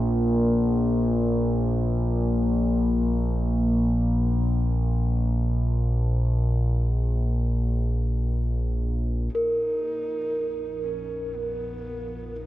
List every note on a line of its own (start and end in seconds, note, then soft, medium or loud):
0.00 9.33 A#1 medium
0.00 9.45 A#2 medium
9.34 12.46 A#1 medium
9.34 12.46 F3 medium
9.34 10.85 D#4 medium
9.34 12.46 A#4 medium
9.63 12.46 F4 medium
10.65 12.46 F5 medium
10.84 11.36 C#4 medium
11.34 12.37 B3 medium
11.76 12.46 A#4 medium
12.36 12.46 D#4 medium